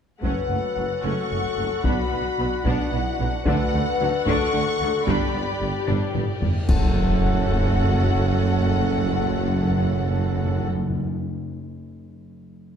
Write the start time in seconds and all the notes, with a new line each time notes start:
0.22 F#1 F#2 A3 C#4 F#4 A4 B4 F#5, taiko
0.49 F#1 F#2 A3
0.76 F#1 F#2 F#3 A3
1.03 F#1 F#2 A3 C#4 A4 C#6
1.30 F#1 F#2 A3
1.44 taiko
1.57 F#1 F#2 F#3 A3
1.83 B1 B2 B3 D4 F#4 B4 B5, taiko
2.12 B1 B2 B3
2.38 B1 B2 F#3 B3
2.64 B1 B2 B3 D4 F#5, taiko
2.91 B1 B2 B3 E4
3.18 B1 B2 F#3 B3 D4
3.44 D2 D3 A3 D4 F#4 A4 B4 F#5, taiko
3.73 D2 D3 A3
4.00 D2 D3 F#3 A3
4.26 D2 D3 A3 D4 A4 C#6, taiko
4.53 D2 D3 A3
4.79 D2 D3 F#3 A3
5.06 G1 G2 G3 D4 G4 B4 D5 B5, taiko, reverse cymbal
5.33 G1 G2 G3 B3
5.60 G1 G2 G3
5.87 G1 G2 G3 D4, taiko low-mid
6.14 G1 G2 G3 B3, taiko low-mid
6.41 G1 G2 G3, taiko low
6.68 F#1 F#2 A3 C#4 F#4 A4 F#5, concert bass drum, taiko, crash, sub drop
6.77 F#2
6.85 F#2
6.93 F#2
7.01 F#2
7.09 F#2
7.17 F#2
7.24 F#2
7.32 F#2
7.40 F#2
7.47 F#2
7.54 F#2
7.61 F#2
7.68 F#2
7.76 F#2
7.84 F#2
7.91 F#2
7.99 F#2
8.06 F#2
8.13 F#2
8.21 F#2
8.28 F#2
8.35 F#2
8.43 F#2
8.51 F#2
8.59 F#2
8.67 F#2
8.74 F#2
8.81 F#2
8.89 F#2
8.96 F#2
9.03 F#2
9.11 F#2
9.18 F#2
9.26 F#2
9.32 F#2
9.40 F#2
9.48 F#2
9.55 F#2
9.63 F#2
9.70 F#2
9.78 F#2
9.85 F#2
9.92 F#2
10.00 F#2
10.08 F#2
10.15 F#2
10.23 F#2
10.30 F#2
10.37 F#2
10.45 F#2
10.52 F#2
10.60 F#2
10.67 F#2
10.74 F#2
10.82 F#2
10.90 F#2
10.96 F#2
11.04 F#2